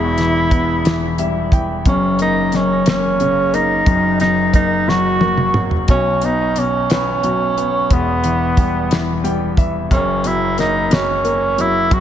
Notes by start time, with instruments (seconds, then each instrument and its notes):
Already playing: grand piano E1 E2, tenor saxophone E4
0.18 grand piano E3, snare, closed hi-hat
0.51 grand piano B3, kick, closed hi-hat
0.85 grand piano E3, snare, closed hi-hat
1.18 grand piano G3 E5, closed hi-hat
1.52 grand piano E3 G5, kick, closed hi-hat
1.85 grand piano F#1 F#2, tenor saxophone C#4, kick, closed hi-hat
2.19 grand piano A#3, tenor saxophone D#4, closed hi-hat
2.52 grand piano F#2, tenor saxophone C#4, snare, closed hi-hat
2.86 grand piano A#3, tenor saxophone C#4, snare, closed hi-hat
3.20 grand piano C#3, closed hi-hat
3.53 grand piano A#3, tenor saxophone D#4, closed hi-hat
3.86 grand piano F#1 F#2, kick, closed hi-hat
4.20 grand piano F#3, tenor saxophone D#4, snare, closed hi-hat
4.54 grand piano A#3, tenor saxophone D#4, kick, closed hi-hat
4.88 grand piano F#3, tenor saxophone F#4, snare
5.21 grand piano A#3, high tom
5.37 mid tom
5.54 grand piano F#3, mid tom
5.71 floor tom
5.88 grand piano B1 B2, tenor saxophone C#4, kick, closed hi-hat
6.21 grand piano B3, tenor saxophone D#4, closed hi-hat
6.56 grand piano B2, tenor saxophone C#4, closed hi-hat
6.90 grand piano B3, tenor saxophone C#4, snare, closed hi-hat
7.23 grand piano F#3, closed hi-hat
7.57 grand piano B3, closed hi-hat
7.90 grand piano E1 E2, tenor saxophone B3, kick, closed hi-hat
8.24 grand piano E3, closed hi-hat
8.57 grand piano G3, kick, closed hi-hat
8.91 grand piano E3, snare, closed hi-hat
9.24 grand piano G3 G5, closed hi-hat
9.57 grand piano E3 E5, kick, closed hi-hat
9.91 grand piano F#1 F#2, tenor saxophone C#4, kick, closed hi-hat
10.24 grand piano F#3, tenor saxophone E4, closed hi-hat
10.58 grand piano A#3, tenor saxophone D#4, snare, closed hi-hat
10.91 grand piano F#3, tenor saxophone C#4, snare, closed hi-hat
11.24 grand piano A#3, closed hi-hat
11.58 grand piano F#3, tenor saxophone E4, closed hi-hat
11.91 grand piano F#1 F#2, tenor saxophone F#4, kick, closed hi-hat